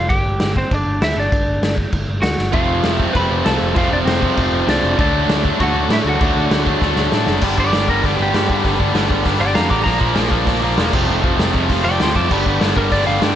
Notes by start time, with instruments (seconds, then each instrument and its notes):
Already playing: picked electric bass F1
0.09 picked electric bass G1, lead electric guitar G4 G5, kick, crash
0.26 picked electric bass G1
0.40 picked electric bass G1, snare, crash
0.56 lead electric guitar C4 C5, kick
0.71 picked electric bass G1, lead electric guitar D4 D5, kick, crash
0.86 picked electric bass G1
1.01 picked electric bass D2, lead electric guitar E4 E5, snare, crash
1.16 picked electric bass G1, lead electric guitar D4 D5
1.32 picked electric bass G1, kick, crash
1.47 picked electric bass G1
1.62 picked electric bass G1, snare, crash
1.78 kick
1.93 picked electric bass G1, kick, crash
2.09 picked electric bass G1
2.22 picked electric bass D2, lead electric guitar F#4 F#5, snare, crash
2.38 picked electric bass G1, snare
2.53 picked electric bass F1, distorted electric guitar F2 C3 F3 A3 C4, lead electric guitar F4 F5, kick, crash
2.69 picked electric bass F1
2.84 picked electric bass F1, snare, crash
2.95 distorted electric guitar F3, lead electric guitar E5
2.99 distorted electric guitar F2 C3, kick
3.13 picked electric bass F1, distorted electric guitar F2 C3 F3 A3 C4, lead electric guitar B4 B5, kick, crash
3.30 picked electric bass F1
3.45 picked electric bass C2, lead electric guitar A4 A5, snare, crash
3.61 picked electric bass F1
3.74 picked electric bass F1, distorted electric guitar F2 C3 F3 A3 C4, lead electric guitar F4 F5, kick, crash
3.91 picked electric bass F1, lead electric guitar D4 D5
4.05 picked electric bass F1, lead electric guitar C4 C5, snare, crash
4.21 distorted electric guitar F2 C3 F3, kick
4.37 picked electric bass F1, distorted electric guitar F2 C3 F3 A3 C4, kick, crash
4.51 picked electric bass F1
4.67 picked electric bass C2, lead electric guitar D4 D5, snare, crash
4.83 picked electric bass F1
4.98 picked electric bass D2, distorted electric guitar D3 F#3 A3 D4, lead electric guitar D4 D5, kick, crash
5.13 picked electric bass D2
5.29 picked electric bass D2, snare, crash
5.44 distorted electric guitar D3 A3 D4, kick
5.59 picked electric bass D2, distorted electric guitar D3 F#3 A3 D4, lead electric guitar F#4, kick, crash
5.63 lead electric guitar F#5
5.74 picked electric bass D2
5.89 picked electric bass A2, lead electric guitar E4, snare, crash
5.94 lead electric guitar E5
6.05 picked electric bass D2, lead electric guitar F#4
6.09 lead electric guitar F#5
6.18 picked electric bass D2, distorted electric guitar D3 F#3 A3 D4, kick, crash
6.36 picked electric bass D2
6.51 picked electric bass D2, snare, crash
6.65 distorted electric guitar D3 A3 D4, kick
6.81 picked electric bass D2, distorted electric guitar D3 F#3 A3 D4, kick, snare
6.96 picked electric bass D2, snare
7.12 picked electric bass A2, snare
7.26 picked electric bass F#1, snare
7.41 picked electric bass G1, distorted electric guitar G2 D3 G3 B3 D4, kick, crash
7.58 picked electric bass G1, distorted electric guitar G2 D3 G3 B3 D4, lead electric guitar D5, kick
7.73 picked electric bass G1, distorted electric guitar G2 D3 G3 B3 D4, snare, open hi-hat
7.88 picked electric bass G1, distorted electric guitar G2 D3 G3 B3 D4, lead electric guitar A#4, kick
8.03 picked electric bass G1, distorted electric guitar G2 D3 G3 B3 D4, lead electric guitar G4, kick, open hi-hat
8.18 picked electric bass G1, distorted electric guitar G2 D3 G3 B3 D4, lead electric guitar G4
8.34 picked electric bass G2, distorted electric guitar G2 D3 G3 B3 D4, snare, open hi-hat
8.50 picked electric bass G2, distorted electric guitar G2 D3 G3 B3 D4, kick
8.65 picked electric bass G1, distorted electric guitar G2 D3 G3 B3 D4, kick, open hi-hat
8.79 picked electric bass G1, distorted electric guitar G2 D3 G3 B3 D4, kick
8.95 picked electric bass G1, distorted electric guitar G2 D3 G3 B3 D4, snare, open hi-hat
9.10 picked electric bass G1, distorted electric guitar G2 D3 G3 B3 D4, kick
9.25 picked electric bass G1, distorted electric guitar G2 D3 G3 B3 D4, kick, open hi-hat
9.39 picked electric bass G1, distorted electric guitar G2 D3 G3 B3 D4, lead electric guitar D5 G5
9.44 distorted electric guitar G2
9.54 picked electric bass F2, distorted electric guitar G2 D3 G3 B3 D4, lead electric guitar F5 A#5, snare, open hi-hat
9.70 picked electric bass A1, distorted electric guitar G2 D3 G3 B3 D4, lead electric guitar A#5 D6, kick
9.84 picked electric bass A#1, distorted electric guitar A#2 F3 A#3 D4, lead electric guitar A#5, kick, open hi-hat
9.99 picked electric bass A#1, distorted electric guitar A#2 F3 A#3 D4, kick
10.15 picked electric bass A#1, distorted electric guitar A#2 F3 A#3 D4, snare, open hi-hat
10.31 picked electric bass A#1, distorted electric guitar A#2 F3 A#3 D4, kick
10.46 picked electric bass A#1, distorted electric guitar A#2 F3 A#3 D4, kick, open hi-hat
10.62 picked electric bass A#1, distorted electric guitar A#2 F3 A#3 D4
10.77 picked electric bass E1, distorted electric guitar A#2 F3 A#3 D4, snare, open hi-hat
10.93 picked electric bass F1, distorted electric guitar F2 C3 F3 A3 C4, kick, crash
11.08 picked electric bass F1, distorted electric guitar F2 C3 F3 A3 C4
11.24 picked electric bass F1, distorted electric guitar F2 C3 F3 A3 C4, kick
11.38 picked electric bass F1, distorted electric guitar F2 C3 F3 A3 C4, snare, open hi-hat
11.53 picked electric bass F1, distorted electric guitar F2 C3 F3 A3 C4, kick
11.69 picked electric bass F1, distorted electric guitar F2 C3 F3 A3 C4, kick, open hi-hat
11.84 picked electric bass F1, distorted electric guitar F2 C3 F3 A3 C4, lead electric guitar D5 G5
11.99 picked electric bass D2, distorted electric guitar F2 C3 F3 A3 C4, lead electric guitar G5 C6, snare, open hi-hat
12.15 distorted electric guitar F2 C3 F3 A3 C4, picked electric bass F2, lead electric guitar A5 D6, kick
12.31 picked electric bass G1, distorted electric guitar G2 D3 G3 B3 D4, lead electric guitar B5, kick, crash
12.46 picked electric bass G1, distorted electric guitar G2 D3 G3 B3 D4, kick
12.61 picked electric bass G1, distorted electric guitar G2 D3 G3 B3 D4, snare, open hi-hat
12.76 picked electric bass G1, distorted electric guitar G2 D3 G3 B3 D4, lead electric guitar A#4, kick
12.92 picked electric bass G1, distorted electric guitar G2 D3 G3 B3 D4, lead electric guitar D5, kick, open hi-hat
13.06 picked electric bass G1, distorted electric guitar G2 D3 G3 B3 D4, lead electric guitar F5
13.20 distorted electric guitar G2 D3 G3 B3 D4, picked electric bass G2, snare, open hi-hat
13.24 lead electric guitar G5